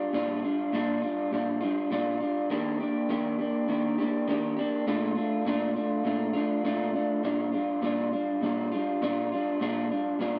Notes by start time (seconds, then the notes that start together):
Already playing: G3 D4 F4
0.13 A#2 G3 D4 F4
0.43 D4 F4
0.47 G3
0.73 A#2 G3 D4 F4
1.02 G3 D4 F4
1.31 A#2 G3 D4 F4
1.61 G3 D4 F4
1.90 A#2 G3 D4 F4
2.20 G3 D4 F4
2.50 D#3 A#3 D4 G4
2.80 A#3 D4 G4
3.09 D#3 A#3 D4 G4
3.39 A#3 D4 G4
3.68 D#3 A#3 D4 G4
3.98 D4 G4
4.02 A#3
4.28 D#3 A#3 D4 G4
4.57 A#3 D4 G4
4.87 A#2 A3 D4 F4
5.15 A3 D4 F4
5.45 A#2 A3 D4 F4
5.74 A3 D4 F4
6.04 A#2 A3 D4 F4
6.33 A3 D4 F4
6.64 A#2 A3 D4 F4
6.93 A3 D4 F4
7.23 A#2 G3 D4 F4
7.52 D4 F4
7.56 G3
7.82 A#2 G3 D4 F4
8.11 G3 D4 F4
8.41 A#2 G3 D4 F4
8.72 G3 D4 F4
9.02 A#2 G3 D4 F4
9.32 G3 D4 F4
9.60 A#2 G3 D4 F4
9.90 G3 D4 F4
10.19 A#2 G3 D4 F4